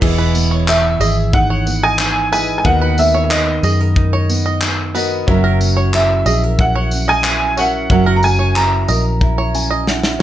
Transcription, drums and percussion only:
0.02 kick, crash
0.35 tambourine
0.68 clap
1.01 tambourine
1.33 kick
1.67 tambourine
1.99 clap
2.33 tambourine
2.65 kick
2.98 tambourine
3.31 clap
3.63 tambourine
3.96 kick
4.30 tambourine
4.61 clap
4.95 tambourine
5.28 kick
5.61 tambourine
5.94 clap
6.26 tambourine
6.59 kick
6.91 tambourine
7.24 clap
7.57 tambourine
7.90 kick
8.23 tambourine
8.56 clap
8.88 tambourine
9.21 kick
9.55 tambourine
9.87 snare
10.03 snare

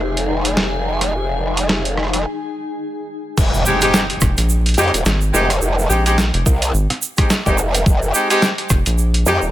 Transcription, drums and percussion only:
0.17 closed hi-hat
0.45 closed hi-hat
0.57 snare
1.01 cross-stick, closed hi-hat
1.57 closed hi-hat
1.69 snare
1.85 closed hi-hat
1.97 cross-stick
2.03 cross-stick
2.07 cross-stick
2.13 cross-stick, closed hi-hat
2.16 cross-stick
2.22 cross-stick
3.38 kick, crash, shaker
3.54 shaker
3.66 shaker
3.81 closed hi-hat, shaker
3.94 snare, shaker
4.10 closed hi-hat
4.21 kick, cross-stick, shaker
4.37 closed hi-hat, shaker
4.49 shaker
4.66 closed hi-hat
4.69 closed hi-hat
4.74 closed hi-hat, shaker
4.78 closed hi-hat
4.83 closed hi-hat
4.88 closed hi-hat
4.94 closed hi-hat, shaker
5.05 snare, shaker
5.21 shaker
5.34 shaker
5.50 cross-stick, closed hi-hat, shaker
5.62 shaker
5.79 shaker
5.90 shaker
6.06 closed hi-hat, shaker
6.18 snare, shaker
6.34 closed hi-hat
6.46 kick, shaker
6.62 closed hi-hat, shaker
6.74 shaker
6.90 cross-stick, closed hi-hat
7.02 shaker
7.17 kick, cross-stick, closed hi-hat, shaker
7.30 snare, shaker
7.46 kick, shaker
7.58 shaker
7.74 closed hi-hat, shaker
7.86 kick, shaker
8.02 shaker
8.14 shaker
8.30 closed hi-hat, shaker
8.42 snare, shaker
8.58 closed hi-hat
8.70 kick, cross-stick, shaker
8.86 closed hi-hat, shaker
8.98 shaker
9.14 closed hi-hat
9.26 shaker
9.42 shaker

